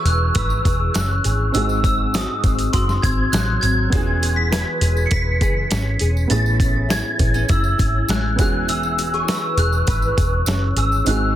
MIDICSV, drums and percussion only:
0, 0, Header, 1, 2, 480
1, 0, Start_track
1, 0, Key_signature, 4, "major"
1, 0, Tempo, 595238
1, 1244, Time_signature, 4, 2, 24, 8
1, 9159, End_track
2, 0, Start_track
2, 0, Title_t, "Drums"
2, 45, Note_on_c, 9, 42, 75
2, 47, Note_on_c, 9, 54, 41
2, 126, Note_off_c, 9, 42, 0
2, 128, Note_off_c, 9, 54, 0
2, 279, Note_on_c, 9, 54, 43
2, 281, Note_on_c, 9, 42, 81
2, 287, Note_on_c, 9, 36, 77
2, 359, Note_off_c, 9, 54, 0
2, 362, Note_off_c, 9, 42, 0
2, 367, Note_off_c, 9, 36, 0
2, 404, Note_on_c, 9, 54, 32
2, 485, Note_off_c, 9, 54, 0
2, 526, Note_on_c, 9, 36, 90
2, 528, Note_on_c, 9, 42, 73
2, 532, Note_on_c, 9, 54, 46
2, 607, Note_off_c, 9, 36, 0
2, 608, Note_off_c, 9, 42, 0
2, 613, Note_off_c, 9, 54, 0
2, 762, Note_on_c, 9, 42, 83
2, 767, Note_on_c, 9, 54, 77
2, 771, Note_on_c, 9, 38, 110
2, 842, Note_off_c, 9, 42, 0
2, 848, Note_off_c, 9, 54, 0
2, 852, Note_off_c, 9, 38, 0
2, 1003, Note_on_c, 9, 42, 67
2, 1008, Note_on_c, 9, 54, 48
2, 1084, Note_off_c, 9, 42, 0
2, 1088, Note_off_c, 9, 54, 0
2, 1244, Note_on_c, 9, 54, 46
2, 1248, Note_on_c, 9, 42, 78
2, 1324, Note_off_c, 9, 54, 0
2, 1329, Note_off_c, 9, 42, 0
2, 1364, Note_on_c, 9, 54, 32
2, 1445, Note_off_c, 9, 54, 0
2, 1483, Note_on_c, 9, 36, 100
2, 1486, Note_on_c, 9, 54, 43
2, 1488, Note_on_c, 9, 42, 85
2, 1564, Note_off_c, 9, 36, 0
2, 1566, Note_off_c, 9, 54, 0
2, 1568, Note_off_c, 9, 42, 0
2, 1725, Note_on_c, 9, 54, 69
2, 1733, Note_on_c, 9, 38, 101
2, 1738, Note_on_c, 9, 42, 79
2, 1806, Note_off_c, 9, 54, 0
2, 1814, Note_off_c, 9, 38, 0
2, 1818, Note_off_c, 9, 42, 0
2, 1965, Note_on_c, 9, 42, 74
2, 1966, Note_on_c, 9, 36, 100
2, 1966, Note_on_c, 9, 54, 41
2, 2045, Note_off_c, 9, 42, 0
2, 2046, Note_off_c, 9, 36, 0
2, 2047, Note_off_c, 9, 54, 0
2, 2085, Note_on_c, 9, 42, 55
2, 2087, Note_on_c, 9, 54, 35
2, 2166, Note_off_c, 9, 42, 0
2, 2168, Note_off_c, 9, 54, 0
2, 2203, Note_on_c, 9, 54, 44
2, 2205, Note_on_c, 9, 42, 91
2, 2208, Note_on_c, 9, 36, 78
2, 2283, Note_off_c, 9, 54, 0
2, 2285, Note_off_c, 9, 42, 0
2, 2288, Note_off_c, 9, 36, 0
2, 2331, Note_on_c, 9, 38, 35
2, 2331, Note_on_c, 9, 54, 32
2, 2412, Note_off_c, 9, 38, 0
2, 2412, Note_off_c, 9, 54, 0
2, 2447, Note_on_c, 9, 36, 91
2, 2449, Note_on_c, 9, 42, 74
2, 2455, Note_on_c, 9, 54, 49
2, 2528, Note_off_c, 9, 36, 0
2, 2530, Note_off_c, 9, 42, 0
2, 2536, Note_off_c, 9, 54, 0
2, 2684, Note_on_c, 9, 54, 83
2, 2687, Note_on_c, 9, 42, 80
2, 2696, Note_on_c, 9, 38, 110
2, 2765, Note_off_c, 9, 54, 0
2, 2767, Note_off_c, 9, 42, 0
2, 2776, Note_off_c, 9, 38, 0
2, 2924, Note_on_c, 9, 42, 68
2, 2928, Note_on_c, 9, 54, 42
2, 3005, Note_off_c, 9, 42, 0
2, 3008, Note_off_c, 9, 54, 0
2, 3165, Note_on_c, 9, 42, 71
2, 3166, Note_on_c, 9, 36, 116
2, 3166, Note_on_c, 9, 54, 46
2, 3246, Note_off_c, 9, 42, 0
2, 3247, Note_off_c, 9, 36, 0
2, 3247, Note_off_c, 9, 54, 0
2, 3407, Note_on_c, 9, 54, 44
2, 3411, Note_on_c, 9, 42, 84
2, 3488, Note_off_c, 9, 54, 0
2, 3491, Note_off_c, 9, 42, 0
2, 3648, Note_on_c, 9, 54, 75
2, 3649, Note_on_c, 9, 38, 100
2, 3654, Note_on_c, 9, 42, 87
2, 3729, Note_off_c, 9, 54, 0
2, 3730, Note_off_c, 9, 38, 0
2, 3735, Note_off_c, 9, 42, 0
2, 3882, Note_on_c, 9, 42, 79
2, 3888, Note_on_c, 9, 54, 45
2, 3962, Note_off_c, 9, 42, 0
2, 3969, Note_off_c, 9, 54, 0
2, 4005, Note_on_c, 9, 54, 32
2, 4085, Note_off_c, 9, 54, 0
2, 4119, Note_on_c, 9, 42, 88
2, 4121, Note_on_c, 9, 54, 44
2, 4125, Note_on_c, 9, 36, 83
2, 4199, Note_off_c, 9, 42, 0
2, 4202, Note_off_c, 9, 54, 0
2, 4205, Note_off_c, 9, 36, 0
2, 4363, Note_on_c, 9, 42, 70
2, 4364, Note_on_c, 9, 36, 96
2, 4372, Note_on_c, 9, 54, 46
2, 4443, Note_off_c, 9, 42, 0
2, 4444, Note_off_c, 9, 36, 0
2, 4453, Note_off_c, 9, 54, 0
2, 4601, Note_on_c, 9, 42, 80
2, 4607, Note_on_c, 9, 54, 83
2, 4610, Note_on_c, 9, 38, 114
2, 4682, Note_off_c, 9, 42, 0
2, 4687, Note_off_c, 9, 54, 0
2, 4691, Note_off_c, 9, 38, 0
2, 4834, Note_on_c, 9, 42, 70
2, 4851, Note_on_c, 9, 54, 46
2, 4914, Note_off_c, 9, 42, 0
2, 4932, Note_off_c, 9, 54, 0
2, 4973, Note_on_c, 9, 54, 32
2, 5054, Note_off_c, 9, 54, 0
2, 5080, Note_on_c, 9, 42, 71
2, 5088, Note_on_c, 9, 54, 46
2, 5160, Note_off_c, 9, 42, 0
2, 5169, Note_off_c, 9, 54, 0
2, 5209, Note_on_c, 9, 54, 32
2, 5290, Note_off_c, 9, 54, 0
2, 5320, Note_on_c, 9, 36, 101
2, 5324, Note_on_c, 9, 42, 87
2, 5330, Note_on_c, 9, 54, 48
2, 5401, Note_off_c, 9, 36, 0
2, 5404, Note_off_c, 9, 42, 0
2, 5411, Note_off_c, 9, 54, 0
2, 5567, Note_on_c, 9, 38, 106
2, 5567, Note_on_c, 9, 54, 75
2, 5572, Note_on_c, 9, 42, 84
2, 5648, Note_off_c, 9, 38, 0
2, 5648, Note_off_c, 9, 54, 0
2, 5653, Note_off_c, 9, 42, 0
2, 5801, Note_on_c, 9, 42, 75
2, 5802, Note_on_c, 9, 54, 39
2, 5804, Note_on_c, 9, 36, 97
2, 5882, Note_off_c, 9, 42, 0
2, 5883, Note_off_c, 9, 54, 0
2, 5884, Note_off_c, 9, 36, 0
2, 5921, Note_on_c, 9, 54, 34
2, 6001, Note_off_c, 9, 54, 0
2, 6036, Note_on_c, 9, 54, 43
2, 6040, Note_on_c, 9, 42, 79
2, 6044, Note_on_c, 9, 36, 84
2, 6116, Note_off_c, 9, 54, 0
2, 6121, Note_off_c, 9, 42, 0
2, 6125, Note_off_c, 9, 36, 0
2, 6159, Note_on_c, 9, 54, 30
2, 6240, Note_off_c, 9, 54, 0
2, 6282, Note_on_c, 9, 54, 44
2, 6285, Note_on_c, 9, 36, 93
2, 6289, Note_on_c, 9, 42, 78
2, 6363, Note_off_c, 9, 54, 0
2, 6366, Note_off_c, 9, 36, 0
2, 6369, Note_off_c, 9, 42, 0
2, 6519, Note_on_c, 9, 54, 82
2, 6525, Note_on_c, 9, 42, 75
2, 6535, Note_on_c, 9, 38, 121
2, 6600, Note_off_c, 9, 54, 0
2, 6606, Note_off_c, 9, 42, 0
2, 6615, Note_off_c, 9, 38, 0
2, 6763, Note_on_c, 9, 42, 66
2, 6765, Note_on_c, 9, 36, 94
2, 6765, Note_on_c, 9, 54, 48
2, 6844, Note_off_c, 9, 42, 0
2, 6845, Note_off_c, 9, 36, 0
2, 6846, Note_off_c, 9, 54, 0
2, 7003, Note_on_c, 9, 54, 51
2, 7007, Note_on_c, 9, 42, 71
2, 7083, Note_off_c, 9, 54, 0
2, 7088, Note_off_c, 9, 42, 0
2, 7122, Note_on_c, 9, 54, 31
2, 7203, Note_off_c, 9, 54, 0
2, 7244, Note_on_c, 9, 54, 45
2, 7248, Note_on_c, 9, 42, 81
2, 7324, Note_off_c, 9, 54, 0
2, 7328, Note_off_c, 9, 42, 0
2, 7485, Note_on_c, 9, 54, 75
2, 7489, Note_on_c, 9, 38, 104
2, 7493, Note_on_c, 9, 42, 89
2, 7566, Note_off_c, 9, 54, 0
2, 7569, Note_off_c, 9, 38, 0
2, 7574, Note_off_c, 9, 42, 0
2, 7722, Note_on_c, 9, 42, 74
2, 7722, Note_on_c, 9, 54, 43
2, 7803, Note_off_c, 9, 42, 0
2, 7803, Note_off_c, 9, 54, 0
2, 7843, Note_on_c, 9, 54, 34
2, 7924, Note_off_c, 9, 54, 0
2, 7957, Note_on_c, 9, 54, 44
2, 7963, Note_on_c, 9, 42, 77
2, 7966, Note_on_c, 9, 36, 81
2, 8037, Note_off_c, 9, 54, 0
2, 8043, Note_off_c, 9, 42, 0
2, 8047, Note_off_c, 9, 36, 0
2, 8082, Note_on_c, 9, 54, 31
2, 8163, Note_off_c, 9, 54, 0
2, 8206, Note_on_c, 9, 36, 88
2, 8207, Note_on_c, 9, 54, 46
2, 8208, Note_on_c, 9, 42, 73
2, 8287, Note_off_c, 9, 36, 0
2, 8288, Note_off_c, 9, 42, 0
2, 8288, Note_off_c, 9, 54, 0
2, 8437, Note_on_c, 9, 54, 82
2, 8445, Note_on_c, 9, 42, 80
2, 8454, Note_on_c, 9, 38, 108
2, 8518, Note_off_c, 9, 54, 0
2, 8526, Note_off_c, 9, 42, 0
2, 8535, Note_off_c, 9, 38, 0
2, 8681, Note_on_c, 9, 42, 66
2, 8681, Note_on_c, 9, 54, 49
2, 8762, Note_off_c, 9, 42, 0
2, 8762, Note_off_c, 9, 54, 0
2, 8806, Note_on_c, 9, 54, 32
2, 8886, Note_off_c, 9, 54, 0
2, 8919, Note_on_c, 9, 54, 51
2, 8923, Note_on_c, 9, 42, 76
2, 8999, Note_off_c, 9, 54, 0
2, 9004, Note_off_c, 9, 42, 0
2, 9159, End_track
0, 0, End_of_file